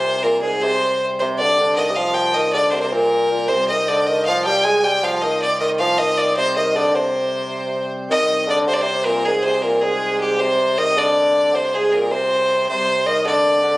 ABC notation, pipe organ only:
X:1
M:6/8
L:1/8
Q:3/8=105
K:Cm
V:1 name="Pipe organ" clef=bass
[C,G,]6- | [C,G,]6- | [C,G,]6 | [C,G,]6- |
[C,G,]6- | [C,G,]6- | [C,G,]6 | [C,G,]6- |
[C,G,]6- | [C,G,]6- | [C,G,]6 | [C,G,]6 |]